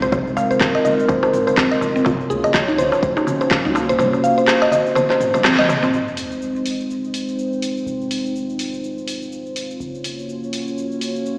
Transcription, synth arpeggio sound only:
0.02 C5
0.13 C5
0.37 F5
0.51 C5
0.75 D#5
0.85 D#5
1.09 C5
1.23 C5
1.47 C5
1.57 C4
1.72 D#5
1.96 C4
2.06 F4
2.30 G#4
2.44 D#5
2.68 D#4
2.78 C5
3.03 C5
3.17 D#4
3.41 C5
3.51 F4
3.65 D#4
3.89 C5
3.99 C5
4.24 F5
4.38 C5
4.62 D#5
4.72 D#5
4.96 C5
5.10 C5
5.35 C5
5.45 C4
5.59 D#5
5.83 C4

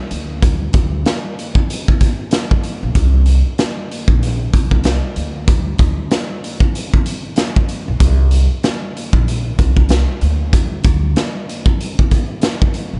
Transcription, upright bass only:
0.11 D2
0.74 D2
2.83 A#1
2.95 C2
4.08 A#1
4.54 C2
5.16 D2
5.79 D2
7.88 A#1
8.00 C2
9.13 A#1
9.59 C2
10.22 D2
10.85 D2
12.93 A#1

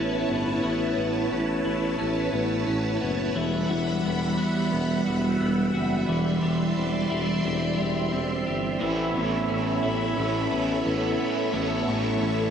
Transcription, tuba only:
Already playing: A1
0.28 G1
0.63 A1
0.97 A1
1.31 A1
1.65 A1
1.99 A1
2.33 A1
2.67 A1
3.01 F#1
3.35 E1
3.70 E1
4.04 E1
4.72 E1
5.06 E1
5.40 E1
5.74 F#1
6.08 E1
6.42 E1
6.76 E1
7.11 E1
7.44 E1
7.79 E1
8.13 E1
8.47 G1
8.81 A1
9.15 A1
9.49 A1
9.84 A1
10.17 A1
10.51 A1
10.86 A1
11.53 A1
11.87 A1
12.21 A1

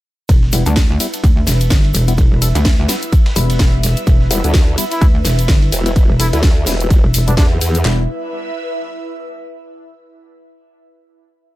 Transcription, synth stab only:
0.53 G3 B3 E4
0.66 G3 B3 D4
1.00 G3 B3 E4
2.08 G3 B3 E4
2.42 G3 B3 A4
2.55 G3 B3 E4
2.89 G3 B3 E4
3.36 G3 B3 E4
4.31 G3 B3 E4
4.44 G3 B3 D4
4.78 G3 B3 E4
5.86 G3 B3 E4
6.20 G3 B3 A4
6.33 G3 B3 E4
6.67 G3 B3 E4
7.28 G3 B3 E4
7.85 G3 B3 E4

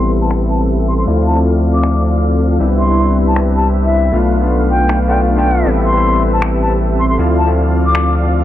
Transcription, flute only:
Already playing: C6
0.21 A5
0.50 A5
0.88 C6
0.98 C6
1.26 A5
1.74 D6
2.79 C6
3.27 A5
3.56 A5
3.85 E5
4.70 G5
5.09 G5
5.38 G5
5.85 C6
6.33 A5
6.61 A5
6.99 C6
7.09 C6
7.38 A5
7.86 D6

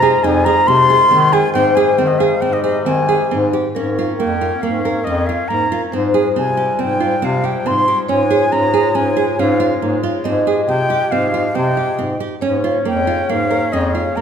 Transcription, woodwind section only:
Already playing: D#3 G#3 F4
1.53 C3 G3
3.74 A#3 C4 C#4
5.94 F3 G3 G#3
8.09 C#3 F4
10.24 F3 G4
12.42 C#3 A#3 C#4

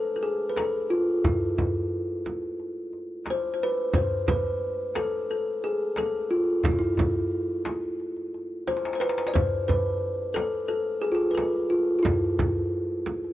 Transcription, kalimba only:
Already playing: A4
0.16 A4
0.23 G#4
0.49 B4
0.57 A4
0.90 F4
1.25 E4
3.30 C5
3.54 C5
3.63 B4
3.95 C5
4.28 B4
4.96 A4
5.31 A4
5.64 G#4
5.98 A4
6.31 F4
6.66 E4
6.71 F4
6.79 E4
8.68 C5
8.95 C5
9.00 B4
9.28 D5
9.34 C5
9.68 B4
10.34 A4
10.68 A4
11.02 G#4
11.12 F4 G#4
11.31 A4 B4
11.70 F4
11.99 E4 F4

